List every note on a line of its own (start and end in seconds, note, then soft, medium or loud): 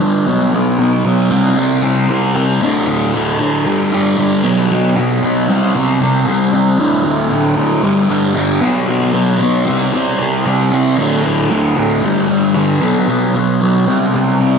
0.00 0.25 G2 medium
0.00 0.26 D3 medium
0.00 0.26 G3 medium
0.27 0.51 B2 medium
0.27 0.53 F#3 medium
0.27 0.53 B3 medium
0.52 1.03 B2 medium
0.52 0.80 F#3 medium
0.52 0.78 B3 loud
0.79 1.05 F#3 medium
0.79 1.06 B3 medium
1.04 1.30 B2 medium
1.04 1.30 F#3 medium
1.04 1.30 B3 medium
1.30 1.55 C3 medium
1.30 1.57 G3 medium
1.30 1.58 C4 medium
1.57 2.08 C3 medium
1.57 1.84 G3 loud
1.57 1.81 C4 loud
1.83 2.09 G3 soft
1.83 2.10 C4 medium
2.09 2.60 C3 medium
2.09 2.36 G3 medium
2.09 2.34 C4 loud
2.35 2.61 G3 medium
2.35 2.60 C4 medium
2.61 3.12 D2 medium
2.61 2.88 A2 medium
2.61 2.86 D3 medium
2.87 3.14 A2 medium
2.87 3.15 D3 medium
3.13 3.64 D2 medium
3.13 3.40 A2 medium
3.13 3.38 D3 medium
3.39 3.65 A2 medium
3.39 3.64 D3 medium
3.65 4.16 G2 medium
3.65 3.93 D3 loud
3.65 3.91 G3 loud
3.92 4.17 D3 soft
3.92 4.19 G3 medium
4.17 4.42 G2 medium
4.17 4.43 D3 medium
4.17 4.43 G3 medium
4.43 4.69 B2 medium
4.43 4.70 F#3 medium
4.43 4.71 B3 loud
4.70 5.21 B2 medium
4.70 4.98 F#3 medium
4.70 4.95 B3 medium
4.96 5.22 F#3 medium
4.96 5.24 B3 medium
5.22 5.47 B2 medium
5.22 5.48 F#3 medium
5.22 5.48 B3 medium
5.48 5.73 C3 medium
5.48 5.75 G3 medium
5.48 5.75 C4 medium
5.75 6.25 C3 medium
5.75 6.02 G3 medium
5.75 5.99 C4 loud
6.01 6.27 G3 medium
6.01 6.28 C4 medium
6.26 6.77 C3 medium
6.26 6.54 G3 medium
6.26 6.51 C4 medium
6.53 6.78 G3 medium
6.53 6.77 C4 medium
6.78 7.29 D2 medium
6.78 7.06 A2 medium
6.78 7.04 D3 medium
7.05 7.31 A2 medium
7.05 7.32 D3 medium
7.31 7.82 D2 medium
7.31 7.58 A2 medium
7.31 7.56 D3 medium
7.57 7.83 A2 medium
7.57 7.82 D3 medium
7.82 8.33 G2 medium
7.82 8.10 D3 medium
7.82 8.07 G3 medium
8.08 8.35 D3 medium
8.08 8.36 G3 medium
8.35 8.60 G2 medium
8.35 8.60 D3 medium
8.35 8.61 G3 medium
8.61 8.86 B2 medium
8.61 8.87 F#3 medium
8.61 8.88 B3 medium
8.87 9.38 B2 medium
8.87 9.14 F#3 medium
8.87 9.12 B3 medium
9.13 9.39 F#3 medium
9.13 9.40 B3 medium
9.39 9.64 B2 medium
9.39 9.65 F#3 medium
9.39 9.66 B3 medium
9.66 9.91 C3 medium
9.66 9.93 G3 medium
9.66 9.94 C4 medium
9.93 10.44 C3 loud
9.93 10.20 G3 medium
9.93 10.18 C4 loud
10.19 10.45 G3 medium
10.19 10.46 C4 medium
10.45 10.96 C3 medium
10.45 10.72 G3 loud
10.45 10.70 C4 loud
10.71 10.97 G3 medium
10.71 10.96 C4 medium
10.97 11.49 D2 medium
10.97 11.25 A2 medium
10.97 11.23 D3 loud
11.24 11.50 A2 medium
11.24 11.51 D3 medium
11.50 12.01 D2 medium
11.50 11.77 A2 medium
11.50 11.75 D3 medium
11.76 12.02 A2 medium
11.76 12.01 D3 medium
12.02 12.53 G2 medium
12.02 12.30 D3 loud
12.02 12.27 G3 loud
12.28 12.55 D3 medium
12.28 12.56 G3 medium
12.54 12.80 G2 medium
12.54 12.81 D3 medium
12.54 12.81 G3 loud
12.81 13.06 B2 medium
12.81 13.08 F#3 medium
12.81 13.09 B3 medium
13.08 13.60 B2 medium
13.08 13.35 F#3 medium
13.08 13.33 B3 loud
13.34 13.61 F#3 medium
13.34 13.62 B3 medium
13.61 13.86 B2 medium
13.61 13.87 F#3 medium
13.61 13.86 B3 medium
13.87 14.13 C3 medium
13.87 14.14 G3 medium
13.87 14.15 C4 medium
14.14 14.59 C3 medium
14.14 14.41 G3 loud
14.14 14.38 C4 loud
14.40 14.59 G3 soft
14.40 14.59 C4 medium